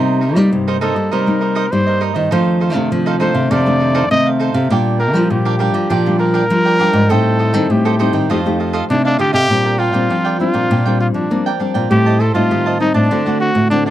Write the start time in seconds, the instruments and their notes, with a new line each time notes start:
Already playing: nylon-string guitar C3 G3 A#3 D#4, cavaquinho D#4 A#4 C5 D#5
0.21 cavaquinho D#4 A#4 C5 D#5
0.35 nylon-string guitar G3 A#3 D#4, cavaquinho A#4 C5 D#5
0.52 nylon-string guitar G2 C3
0.68 cavaquinho D#4 A#4 C5 D#5
0.81 nylon-string guitar G3 A#3 D#4, cavaquinho D#4 A#4 C5 D#5, trumpet A4
0.95 nylon-string guitar G3, cavaquinho A#4 C5 D#5
1.11 nylon-string guitar C3 G3, cavaquinho D#4 A#4 C5 D#5, trumpet A#4
1.27 nylon-string guitar G3 A#3 D#4
1.41 cavaquinho D#4 A#4 C5 D#5
1.55 cavaquinho D#4 A#4 C5 D#5
1.72 nylon-string guitar G2 G3 A#3 D#4, trumpet C5
1.87 cavaquinho A#4 C5 D#5
2.01 cavaquinho D#4 A#4 C5 D#5
2.14 nylon-string guitar D#3, cavaquinho A#4 C5 D#5
2.31 nylon-string guitar F2 D#3 F3 A3 D4, cavaquinho D#4 A4 C5 F5
2.60 cavaquinho D#4 A4 C5 F5
2.74 nylon-string guitar C3 D#3 A3 D4, cavaquinho A4 C5 F5
2.91 nylon-string guitar C3 F3
3.06 cavaquinho D#4 A4 C5 F5
3.20 nylon-string guitar D#3 A3 D4, cavaquinho D#4 A4 C5 F5, trumpet C5
3.34 nylon-string guitar C3, cavaquinho A4 C5 F5
3.50 nylon-string guitar F2 C3, cavaquinho D#4 A4 C5 F5, trumpet D5
3.66 nylon-string guitar D#3 A3 D4
3.80 cavaquinho D#4 A4 C5 F5
3.95 cavaquinho D#4 A4 C5 F5
4.10 nylon-string guitar C3 D#3 A3, trumpet D#5
4.26 cavaquinho A4 C5 F5
4.39 cavaquinho D#4 A4 C5 F5
4.54 nylon-string guitar C3, cavaquinho A4 C5 F5
4.70 nylon-string guitar A#2 G3 D4 F4, cavaquinho D4 A#4 D5 G5
4.99 cavaquinho D4 A#4 D5 G5, trumpet A#4
5.13 nylon-string guitar F3 G3 D4 F4, cavaquinho A#4 D5 G5
5.30 nylon-string guitar A#2 F3, trumpet G4
5.45 cavaquinho D4 A#4 D5 G5
5.59 nylon-string guitar G3 D4 F4, cavaquinho D4 A#4 D5 G5
5.74 nylon-string guitar F3, cavaquinho A#4 D5 G5
5.90 nylon-string guitar A#2 F3, cavaquinho D4 A#4 D5 G5
6.06 nylon-string guitar G3 D4 F4
6.19 cavaquinho D4 A#4 D5 G5, trumpet A#4
6.34 cavaquinho D4 A#4 D5 G5
6.50 nylon-string guitar F3 G3 D4 F4
6.65 cavaquinho A#4 D5 G5
6.79 nylon-string guitar G3 D4 F4, cavaquinho D4 A#4 D5 G5
6.93 nylon-string guitar G#2, cavaquinho A#4 D5 G5
7.09 nylon-string guitar A2 G3 C4 D#4, cavaquinho A4 C5 D#5 G5, trumpet A4
7.39 cavaquinho A4 C5 D#5 G5
7.53 nylon-string guitar D#3 G3 C4 D#4, cavaquinho C5 D#5 G5
7.70 nylon-string guitar A2, trumpet G4
7.85 cavaquinho A4 C5 D#5 G5
7.99 nylon-string guitar G3 C4 D#4, cavaquinho A4 C5 D#5 G5
8.13 nylon-string guitar D#3, cavaquinho C5 D#5 G5
8.30 nylon-string guitar F2 F3 A3 D#4 G4, cavaquinho F4 A4 D#5 F5
8.46 nylon-string guitar A3 D#4 G4
8.59 cavaquinho F4 A4 D#5 F5
8.73 cavaquinho F4 A4 D#5 F5
8.90 nylon-string guitar C3 A3 D#4 G4, trumpet D4
9.05 trumpet D4, cavaquinho A4 D#5 F5
9.18 nylon-string guitar D3, cavaquinho F4 A4 D#5 F5, trumpet G4
9.33 nylon-string guitar C3, trumpet G4, cavaquinho A4 D#5 F5
9.49 nylon-string guitar A#2 G3 C4 D4, cavaquinho D4 A#4 D5 G5
9.64 cavaquinho A#4 D5 G5
9.78 cavaquinho D4 A#4 D5 G5, trumpet F4
9.92 nylon-string guitar A#2 G3 C4 D4, cavaquinho A#4 D5 G5
10.09 nylon-string guitar F3, cavaquinho D4 A#4 D5 G5
10.25 cavaquinho A#4 D5 G5
10.40 nylon-string guitar G3 C4 D4, trumpet F4
10.53 nylon-string guitar A#2, cavaquinho A#4 D5 G5
10.70 nylon-string guitar A#2, cavaquinho D4 A#4 D5 G5
10.86 nylon-string guitar G3 C4 D4, cavaquinho A#4 D5 G5
11.00 trumpet F4, muted cavaquinho stroke
11.14 nylon-string guitar F3, trumpet D4, muted cavaquinho stroke
11.30 nylon-string guitar F3 G3 A#3 C4 D4
11.46 cavaquinho A#4 D5 G5
11.59 nylon-string guitar G3 C4 D4, cavaquinho D4 A#4 D5 G5
11.74 nylon-string guitar A#2, cavaquinho A#4 D5 G5
11.91 nylon-string guitar A2 G3 C4 D#4, cavaquinho G4 C5 D#5 A5, trumpet G4
12.06 cavaquinho C5 D#5 A5
12.20 cavaquinho G4 C5 D#5 A5, trumpet A4
12.34 nylon-string guitar A2 G3 C4 D#4, trumpet F4, cavaquinho C5 D#5 A5
12.51 nylon-string guitar A2 D#3, cavaquinho G4 C5 D#5 A5
12.66 cavaquinho C5 D#5 A5
12.80 nylon-string guitar G3 C4 D#4, trumpet D#4
12.94 nylon-string guitar A2, trumpet D4, cavaquinho C5 D#5 A5
13.10 nylon-string guitar D3 A3 C4 F#4, cavaquinho D4 C5 D5 F#5
13.26 nylon-string guitar A3 C4 F#4, cavaquinho C5 D5 F#5
13.40 trumpet F#4, muted cavaquinho stroke
13.54 nylon-string guitar A2, muted cavaquinho stroke
13.70 nylon-string guitar A2 D3 A3 C4 F#4, trumpet D4
13.86 trumpet D4, cavaquinho D5 F#5